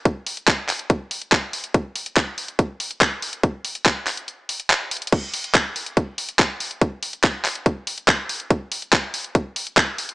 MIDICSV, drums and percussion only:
0, 0, Header, 1, 2, 480
1, 0, Start_track
1, 0, Tempo, 422535
1, 61, Time_signature, 4, 2, 24, 8
1, 11521, End_track
2, 0, Start_track
2, 0, Title_t, "Drums"
2, 61, Note_on_c, 9, 36, 117
2, 61, Note_on_c, 9, 42, 62
2, 175, Note_off_c, 9, 36, 0
2, 175, Note_off_c, 9, 42, 0
2, 301, Note_on_c, 9, 46, 104
2, 415, Note_off_c, 9, 46, 0
2, 421, Note_on_c, 9, 42, 65
2, 535, Note_off_c, 9, 42, 0
2, 541, Note_on_c, 9, 36, 119
2, 541, Note_on_c, 9, 39, 118
2, 541, Note_on_c, 9, 42, 67
2, 655, Note_off_c, 9, 36, 0
2, 655, Note_off_c, 9, 39, 0
2, 655, Note_off_c, 9, 42, 0
2, 781, Note_on_c, 9, 39, 60
2, 781, Note_on_c, 9, 46, 104
2, 895, Note_off_c, 9, 39, 0
2, 895, Note_off_c, 9, 46, 0
2, 901, Note_on_c, 9, 42, 69
2, 1015, Note_off_c, 9, 42, 0
2, 1021, Note_on_c, 9, 36, 115
2, 1021, Note_on_c, 9, 42, 68
2, 1135, Note_off_c, 9, 36, 0
2, 1135, Note_off_c, 9, 42, 0
2, 1261, Note_on_c, 9, 46, 102
2, 1375, Note_off_c, 9, 46, 0
2, 1381, Note_on_c, 9, 42, 67
2, 1495, Note_off_c, 9, 42, 0
2, 1501, Note_on_c, 9, 36, 113
2, 1501, Note_on_c, 9, 39, 110
2, 1501, Note_on_c, 9, 42, 68
2, 1615, Note_off_c, 9, 36, 0
2, 1615, Note_off_c, 9, 39, 0
2, 1615, Note_off_c, 9, 42, 0
2, 1741, Note_on_c, 9, 46, 104
2, 1855, Note_off_c, 9, 46, 0
2, 1861, Note_on_c, 9, 42, 67
2, 1975, Note_off_c, 9, 42, 0
2, 1981, Note_on_c, 9, 36, 113
2, 1981, Note_on_c, 9, 42, 68
2, 2095, Note_off_c, 9, 36, 0
2, 2095, Note_off_c, 9, 42, 0
2, 2221, Note_on_c, 9, 46, 98
2, 2335, Note_off_c, 9, 46, 0
2, 2341, Note_on_c, 9, 42, 70
2, 2455, Note_off_c, 9, 42, 0
2, 2461, Note_on_c, 9, 36, 114
2, 2461, Note_on_c, 9, 39, 118
2, 2461, Note_on_c, 9, 42, 68
2, 2575, Note_off_c, 9, 36, 0
2, 2575, Note_off_c, 9, 39, 0
2, 2575, Note_off_c, 9, 42, 0
2, 2701, Note_on_c, 9, 46, 98
2, 2815, Note_off_c, 9, 46, 0
2, 2821, Note_on_c, 9, 42, 70
2, 2935, Note_off_c, 9, 42, 0
2, 2941, Note_on_c, 9, 36, 109
2, 2942, Note_on_c, 9, 42, 68
2, 3055, Note_off_c, 9, 36, 0
2, 3055, Note_off_c, 9, 42, 0
2, 3181, Note_on_c, 9, 46, 102
2, 3295, Note_off_c, 9, 46, 0
2, 3302, Note_on_c, 9, 42, 73
2, 3415, Note_off_c, 9, 42, 0
2, 3421, Note_on_c, 9, 36, 111
2, 3422, Note_on_c, 9, 39, 115
2, 3422, Note_on_c, 9, 42, 67
2, 3535, Note_off_c, 9, 36, 0
2, 3535, Note_off_c, 9, 39, 0
2, 3535, Note_off_c, 9, 42, 0
2, 3662, Note_on_c, 9, 46, 104
2, 3775, Note_off_c, 9, 46, 0
2, 3782, Note_on_c, 9, 42, 70
2, 3895, Note_off_c, 9, 42, 0
2, 3901, Note_on_c, 9, 36, 113
2, 3902, Note_on_c, 9, 42, 67
2, 4015, Note_off_c, 9, 36, 0
2, 4015, Note_off_c, 9, 42, 0
2, 4141, Note_on_c, 9, 46, 100
2, 4255, Note_off_c, 9, 46, 0
2, 4261, Note_on_c, 9, 42, 68
2, 4375, Note_off_c, 9, 42, 0
2, 4382, Note_on_c, 9, 36, 116
2, 4382, Note_on_c, 9, 39, 122
2, 4382, Note_on_c, 9, 42, 72
2, 4495, Note_off_c, 9, 36, 0
2, 4495, Note_off_c, 9, 39, 0
2, 4495, Note_off_c, 9, 42, 0
2, 4622, Note_on_c, 9, 39, 64
2, 4622, Note_on_c, 9, 46, 104
2, 4735, Note_off_c, 9, 39, 0
2, 4735, Note_off_c, 9, 46, 0
2, 4741, Note_on_c, 9, 42, 72
2, 4855, Note_off_c, 9, 42, 0
2, 4862, Note_on_c, 9, 42, 72
2, 4975, Note_off_c, 9, 42, 0
2, 5102, Note_on_c, 9, 46, 108
2, 5215, Note_off_c, 9, 46, 0
2, 5222, Note_on_c, 9, 42, 72
2, 5335, Note_off_c, 9, 42, 0
2, 5342, Note_on_c, 9, 39, 122
2, 5342, Note_on_c, 9, 42, 69
2, 5455, Note_off_c, 9, 39, 0
2, 5455, Note_off_c, 9, 42, 0
2, 5581, Note_on_c, 9, 42, 58
2, 5581, Note_on_c, 9, 46, 102
2, 5641, Note_off_c, 9, 42, 0
2, 5641, Note_on_c, 9, 42, 68
2, 5695, Note_off_c, 9, 46, 0
2, 5701, Note_off_c, 9, 42, 0
2, 5701, Note_on_c, 9, 42, 76
2, 5762, Note_off_c, 9, 42, 0
2, 5762, Note_on_c, 9, 42, 86
2, 5822, Note_off_c, 9, 42, 0
2, 5822, Note_on_c, 9, 36, 122
2, 5822, Note_on_c, 9, 42, 65
2, 5822, Note_on_c, 9, 49, 73
2, 5935, Note_off_c, 9, 36, 0
2, 5935, Note_off_c, 9, 42, 0
2, 5935, Note_off_c, 9, 49, 0
2, 6062, Note_on_c, 9, 46, 108
2, 6175, Note_off_c, 9, 46, 0
2, 6182, Note_on_c, 9, 42, 68
2, 6295, Note_off_c, 9, 42, 0
2, 6302, Note_on_c, 9, 36, 124
2, 6302, Note_on_c, 9, 39, 127
2, 6302, Note_on_c, 9, 42, 72
2, 6415, Note_off_c, 9, 36, 0
2, 6415, Note_off_c, 9, 39, 0
2, 6415, Note_off_c, 9, 42, 0
2, 6542, Note_on_c, 9, 46, 109
2, 6655, Note_off_c, 9, 46, 0
2, 6662, Note_on_c, 9, 42, 71
2, 6775, Note_off_c, 9, 42, 0
2, 6781, Note_on_c, 9, 36, 115
2, 6782, Note_on_c, 9, 42, 68
2, 6895, Note_off_c, 9, 36, 0
2, 6895, Note_off_c, 9, 42, 0
2, 7021, Note_on_c, 9, 46, 110
2, 7135, Note_off_c, 9, 46, 0
2, 7141, Note_on_c, 9, 42, 70
2, 7255, Note_off_c, 9, 42, 0
2, 7261, Note_on_c, 9, 36, 119
2, 7261, Note_on_c, 9, 39, 121
2, 7261, Note_on_c, 9, 42, 67
2, 7375, Note_off_c, 9, 36, 0
2, 7375, Note_off_c, 9, 39, 0
2, 7375, Note_off_c, 9, 42, 0
2, 7501, Note_on_c, 9, 46, 107
2, 7615, Note_off_c, 9, 46, 0
2, 7621, Note_on_c, 9, 42, 71
2, 7735, Note_off_c, 9, 42, 0
2, 7741, Note_on_c, 9, 36, 127
2, 7742, Note_on_c, 9, 42, 63
2, 7855, Note_off_c, 9, 36, 0
2, 7855, Note_off_c, 9, 42, 0
2, 7982, Note_on_c, 9, 46, 109
2, 8095, Note_off_c, 9, 46, 0
2, 8101, Note_on_c, 9, 42, 67
2, 8215, Note_off_c, 9, 42, 0
2, 8221, Note_on_c, 9, 36, 127
2, 8221, Note_on_c, 9, 39, 127
2, 8221, Note_on_c, 9, 42, 71
2, 8335, Note_off_c, 9, 36, 0
2, 8335, Note_off_c, 9, 39, 0
2, 8335, Note_off_c, 9, 42, 0
2, 8461, Note_on_c, 9, 39, 65
2, 8461, Note_on_c, 9, 46, 110
2, 8575, Note_off_c, 9, 39, 0
2, 8575, Note_off_c, 9, 46, 0
2, 8581, Note_on_c, 9, 42, 69
2, 8695, Note_off_c, 9, 42, 0
2, 8702, Note_on_c, 9, 36, 122
2, 8702, Note_on_c, 9, 42, 70
2, 8815, Note_off_c, 9, 36, 0
2, 8815, Note_off_c, 9, 42, 0
2, 8942, Note_on_c, 9, 46, 112
2, 9055, Note_off_c, 9, 46, 0
2, 9061, Note_on_c, 9, 42, 71
2, 9175, Note_off_c, 9, 42, 0
2, 9181, Note_on_c, 9, 36, 126
2, 9181, Note_on_c, 9, 39, 126
2, 9181, Note_on_c, 9, 42, 65
2, 9295, Note_off_c, 9, 36, 0
2, 9295, Note_off_c, 9, 39, 0
2, 9295, Note_off_c, 9, 42, 0
2, 9421, Note_on_c, 9, 46, 115
2, 9535, Note_off_c, 9, 46, 0
2, 9541, Note_on_c, 9, 42, 70
2, 9655, Note_off_c, 9, 42, 0
2, 9661, Note_on_c, 9, 42, 60
2, 9662, Note_on_c, 9, 36, 122
2, 9775, Note_off_c, 9, 36, 0
2, 9775, Note_off_c, 9, 42, 0
2, 9902, Note_on_c, 9, 46, 113
2, 10015, Note_off_c, 9, 46, 0
2, 10021, Note_on_c, 9, 42, 66
2, 10135, Note_off_c, 9, 42, 0
2, 10142, Note_on_c, 9, 36, 127
2, 10142, Note_on_c, 9, 39, 125
2, 10142, Note_on_c, 9, 42, 67
2, 10255, Note_off_c, 9, 36, 0
2, 10255, Note_off_c, 9, 39, 0
2, 10255, Note_off_c, 9, 42, 0
2, 10381, Note_on_c, 9, 46, 116
2, 10495, Note_off_c, 9, 46, 0
2, 10501, Note_on_c, 9, 42, 66
2, 10615, Note_off_c, 9, 42, 0
2, 10621, Note_on_c, 9, 42, 67
2, 10622, Note_on_c, 9, 36, 120
2, 10735, Note_off_c, 9, 36, 0
2, 10735, Note_off_c, 9, 42, 0
2, 10861, Note_on_c, 9, 46, 112
2, 10975, Note_off_c, 9, 46, 0
2, 10981, Note_on_c, 9, 42, 68
2, 11095, Note_off_c, 9, 42, 0
2, 11101, Note_on_c, 9, 39, 124
2, 11101, Note_on_c, 9, 42, 66
2, 11102, Note_on_c, 9, 36, 123
2, 11215, Note_off_c, 9, 36, 0
2, 11215, Note_off_c, 9, 39, 0
2, 11215, Note_off_c, 9, 42, 0
2, 11342, Note_on_c, 9, 46, 114
2, 11455, Note_off_c, 9, 46, 0
2, 11462, Note_on_c, 9, 42, 67
2, 11521, Note_off_c, 9, 42, 0
2, 11521, End_track
0, 0, End_of_file